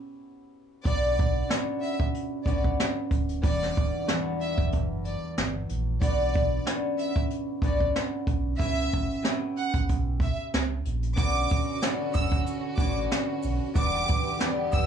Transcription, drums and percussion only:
0.85 kick loud
0.85 closed hi-hat loud
1.17 kick loud
1.17 closed hi-hat medium
1.50 snare loud
1.50 closed hi-hat loud
1.83 closed hi-hat medium
2.00 kick loud
2.14 closed hi-hat medium
2.46 kick loud
2.46 closed hi-hat medium
2.64 kick medium
2.79 snare loud
2.79 closed hi-hat medium
3.11 kick medium
3.11 closed hi-hat medium
3.29 closed hi-hat medium
3.44 kick loud
3.44 closed hi-hat medium
3.62 snare soft
3.75 kick loud
3.75 closed hi-hat medium
4.08 snare loud
4.08 closed hi-hat loud
4.41 closed hi-hat medium
4.58 kick loud
4.72 kick loud
4.72 closed hi-hat medium
5.05 closed hi-hat medium
5.37 snare loud
5.37 closed hi-hat medium
5.69 closed hi-hat medium
6.02 kick loud
6.02 closed hi-hat loud
6.33 kick loud
6.33 closed hi-hat medium
6.67 snare loud
6.67 closed hi-hat loud
6.99 closed hi-hat medium
7.16 kick loud
7.16 closed hi-hat medium
7.30 closed hi-hat medium
7.62 kick loud
7.62 closed hi-hat medium
7.80 kick medium
7.95 snare loud
7.95 closed hi-hat medium
8.27 kick loud
8.27 closed hi-hat medium
8.60 kick loud
8.60 closed hi-hat medium
8.91 kick loud
8.91 closed hi-hat medium
9.10 closed hi-hat medium
9.25 snare loud
9.25 closed hi-hat loud
9.57 closed hi-hat medium
9.74 kick loud
9.74 closed hi-hat medium
9.89 kick medium
9.89 closed hi-hat medium
10.20 kick loud
10.20 closed hi-hat medium
10.53 snare loud
10.53 closed hi-hat medium
10.85 closed hi-hat medium
11.03 closed hi-hat medium
11.18 kick loud
11.18 closed hi-hat loud
11.18 maracas medium
11.36 closed hi-hat medium
11.49 kick loud
11.49 closed hi-hat medium
11.49 maracas medium
11.82 snare loud
11.82 closed hi-hat loud
11.82 maracas medium
12.14 kick loud
12.14 closed hi-hat medium
12.14 high woodblock medium
12.14 maracas soft
12.32 kick loud
12.46 closed hi-hat medium
12.46 maracas medium
12.78 kick loud
12.78 closed hi-hat medium
12.78 maracas soft
13.11 snare loud
13.11 closed hi-hat medium
13.11 maracas medium
13.43 open hi-hat medium
13.43 maracas medium
13.76 kick loud
13.76 closed hi-hat loud
13.76 maracas medium
13.94 closed hi-hat medium
14.07 kick loud
14.07 closed hi-hat medium
14.07 maracas medium
14.40 snare loud
14.40 closed hi-hat loud
14.40 maracas medium
14.72 kick medium
14.72 closed hi-hat medium
14.72 high woodblock medium
14.72 maracas soft

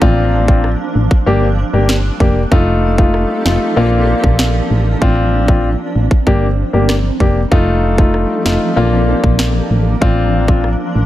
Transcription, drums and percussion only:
0.02 kick loud
0.48 kick loud
0.64 cross-stick medium
1.11 kick medium
1.89 finger snap loud
1.89 snare loud
2.20 kick medium
2.52 kick loud
2.98 kick loud
3.14 cross-stick medium
3.46 finger snap loud
3.46 snare loud
4.24 kick medium
4.39 finger snap loud
4.39 snare loud
5.02 kick loud
5.48 kick loud
6.11 kick medium
6.27 kick medium
6.89 finger snap medium
6.89 cross-stick loud
6.89 snare loud
7.20 kick medium
7.52 kick loud
7.98 kick loud
8.14 cross-stick medium
8.46 finger snap loud
8.46 snare loud
9.24 kick medium
9.39 finger snap loud
9.39 snare loud
10.02 kick loud
10.48 kick loud
10.64 cross-stick medium

